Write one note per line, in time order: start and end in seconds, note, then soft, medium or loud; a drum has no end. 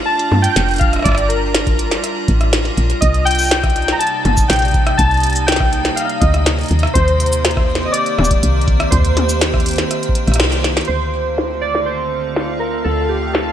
0.00 6.92 G3 medium
0.00 2.98 D4 medium
0.00 2.98 F4 medium
0.00 2.98 A#4 medium
0.06 0.44 A5 loud
0.19 closed hi-hat soft
0.32 0.48 G2 medium
0.32 high tom medium
0.42 0.81 G5 loud
0.42 closed hi-hat medium
0.56 0.98 F1 medium
0.56 snare loud
0.56 closed hi-hat medium
0.69 closed hi-hat soft
0.71 closed hi-hat soft
0.74 closed hi-hat soft
0.76 closed hi-hat soft
0.78 0.91 F5 loud
0.78 kick loud
0.78 closed hi-hat soft
0.81 closed hi-hat soft
0.93 cross-stick soft
0.93 closed hi-hat soft
0.96 cross-stick soft
0.99 cross-stick soft
1.02 1.97 G1 loud
1.02 1.30 D5 loud
1.02 kick medium
1.02 cross-stick medium
1.06 cross-stick medium
1.06 closed hi-hat medium
1.09 cross-stick medium
1.12 cross-stick medium
1.15 cross-stick medium
1.15 closed hi-hat soft
1.28 2.24 A#4 medium
1.28 closed hi-hat medium
1.55 snare loud
1.55 closed hi-hat medium
1.67 kick loud
1.67 closed hi-hat soft
1.79 closed hi-hat medium
1.91 snare medium
1.91 closed hi-hat soft
2.04 cross-stick soft
2.04 closed hi-hat medium
2.28 2.71 A1 loud
2.28 kick medium
2.28 closed hi-hat medium
2.41 cross-stick medium
2.41 closed hi-hat soft
2.53 snare loud
2.53 closed hi-hat medium
2.65 closed hi-hat soft
2.77 2.93 A#1 medium
2.77 closed hi-hat soft
2.90 closed hi-hat soft
3.01 3.94 C2 loud
3.01 6.92 C3 medium
3.01 10.85 A#3 medium
3.01 6.92 D#4 medium
3.01 3.24 D#5 loud
3.01 kick medium
3.01 closed hi-hat medium
3.14 closed hi-hat soft
3.25 3.95 G5 loud
3.25 closed hi-hat medium
3.31 closed hi-hat medium
3.35 closed hi-hat soft
3.39 closed hi-hat soft
3.39 shaker medium
3.41 closed hi-hat soft
3.41 shaker medium
3.44 closed hi-hat soft
3.44 shaker medium
3.46 closed hi-hat soft
3.46 shaker soft
3.49 snare loud
3.49 closed hi-hat medium
3.49 shaker soft
3.57 closed hi-hat soft
3.60 cross-stick medium
3.60 closed hi-hat soft
3.64 kick loud
3.64 closed hi-hat soft
3.70 closed hi-hat soft
3.76 closed hi-hat medium
3.82 closed hi-hat soft
3.88 4.00 A#5 medium
3.88 snare medium
3.88 closed hi-hat soft
3.99 4.45 A5 loud
3.99 closed hi-hat medium
4.07 closed hi-hat soft
4.25 4.41 G1 medium
4.25 closed hi-hat medium
4.25 high tom medium
4.37 kick loud
4.37 shaker medium
4.48 4.92 A#1 medium
4.48 5.00 G5 loud
4.48 snare loud
4.48 closed hi-hat medium
4.53 closed hi-hat medium
4.56 closed hi-hat medium
4.59 closed hi-hat soft
4.62 closed hi-hat soft
4.65 closed hi-hat soft
4.68 closed hi-hat soft
4.71 closed hi-hat soft
4.74 kick loud
4.74 closed hi-hat soft
4.87 cross-stick medium
4.87 closed hi-hat soft
4.97 5.90 C2 loud
4.97 5.44 A5 loud
4.97 kick medium
4.97 closed hi-hat medium
5.11 closed hi-hat soft
5.14 closed hi-hat soft
5.17 closed hi-hat soft
5.20 closed hi-hat soft
5.23 closed hi-hat medium
5.27 closed hi-hat soft
5.30 closed hi-hat soft
5.33 closed hi-hat soft
5.36 closed hi-hat soft
5.36 shaker medium
5.47 5.98 G5 loud
5.47 snare loud
5.47 closed hi-hat medium
5.52 snare medium
5.56 snare medium
5.60 kick loud
5.60 cross-stick medium
5.73 closed hi-hat medium
5.85 snare medium
5.85 closed hi-hat soft
5.96 6.22 F5 medium
5.96 cross-stick soft
5.96 closed hi-hat medium
6.01 cross-stick soft
6.05 cross-stick soft
6.09 closed hi-hat soft
6.20 6.64 D2 loud
6.20 6.67 D#5 medium
6.20 kick medium
6.20 closed hi-hat medium
6.34 cross-stick medium
6.34 closed hi-hat soft
6.46 snare loud
6.46 closed hi-hat medium
6.59 closed hi-hat soft
6.61 closed hi-hat soft
6.63 closed hi-hat soft
6.66 closed hi-hat soft
6.68 6.87 D#2 medium
6.68 closed hi-hat soft
6.71 closed hi-hat soft
6.79 closed hi-hat soft
6.83 cross-stick medium
6.87 closed hi-hat soft
6.94 7.87 D#2 loud
6.94 10.85 D#3 medium
6.94 10.85 C4 medium
6.94 10.85 G4 medium
6.94 7.89 C5 loud
6.94 kick medium
6.94 closed hi-hat medium
7.08 closed hi-hat soft
7.20 closed hi-hat medium
7.26 closed hi-hat soft
7.33 shaker medium
7.45 snare loud
7.45 closed hi-hat medium
7.51 closed hi-hat soft
7.57 kick loud
7.57 cross-stick medium
7.75 snare medium
7.85 7.93 D#5 medium
7.92 8.94 D5 loud
7.92 closed hi-hat medium
8.06 closed hi-hat soft
8.19 8.34 D#1 medium
8.19 cross-stick medium
8.19 high tom medium
8.25 shaker medium
8.31 kick loud
8.31 closed hi-hat medium
8.43 8.85 C2 medium
8.43 closed hi-hat medium
8.61 closed hi-hat soft
8.68 kick loud
8.68 closed hi-hat soft
8.80 cross-stick medium
8.80 closed hi-hat soft
8.91 9.84 D#2 loud
8.91 10.60 C5 medium
8.91 kick medium
8.91 closed hi-hat loud
8.95 kick medium
8.98 kick soft
9.01 kick soft
9.04 kick soft
9.04 closed hi-hat soft
9.08 kick soft
9.11 kick soft
9.14 kick soft
9.14 closed hi-hat medium
9.14 high tom medium
9.29 closed hi-hat soft
9.29 shaker medium
9.41 snare loud
9.41 closed hi-hat medium
9.54 kick loud
9.54 cross-stick medium
9.60 closed hi-hat soft
9.66 closed hi-hat medium
9.68 closed hi-hat medium
9.71 closed hi-hat soft
9.73 closed hi-hat soft
9.76 snare medium
9.76 closed hi-hat soft
9.78 closed hi-hat soft
9.91 cross-stick soft
9.91 closed hi-hat medium
10.03 closed hi-hat soft
10.09 kick medium
10.15 closed hi-hat medium
10.28 10.41 A#1 loud
10.28 cross-stick soft
10.28 closed hi-hat soft
10.32 cross-stick soft
10.32 closed hi-hat medium
10.36 cross-stick soft
10.40 10.82 C2 medium
10.40 snare loud
10.52 closed hi-hat soft
10.64 snare medium
10.64 closed hi-hat soft
10.77 snare medium
10.77 closed hi-hat soft
10.81 closed hi-hat soft
10.85 11.64 C5 loud
10.85 closed hi-hat soft
10.89 12.83 D2 medium
10.89 13.52 D3 medium
10.89 13.52 A3 medium
10.89 13.52 C4 medium
10.89 13.52 F4 medium
10.89 13.52 F5 medium
11.38 snare loud
11.61 11.87 D5 loud
11.75 snare medium
11.86 12.63 C5 loud
12.36 snare loud
12.59 12.86 A#4 medium
12.84 13.52 D2 medium
12.84 13.10 A4 loud
13.09 13.35 G4 medium
13.33 13.52 A4 medium
13.33 snare loud